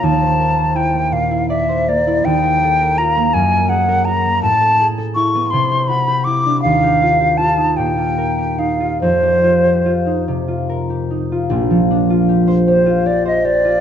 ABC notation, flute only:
X:1
M:6/8
L:1/16
Q:3/8=53
K:Bb
V:1 name="Flute"
a4 g2 f2 =e2 d2 | g4 b2 _a2 _g2 b2 | a4 _d'2 c'2 _c'2 =d'2 | f4 a2 g4 f2 |
c6 z6 | z6 c2 d e d2 |]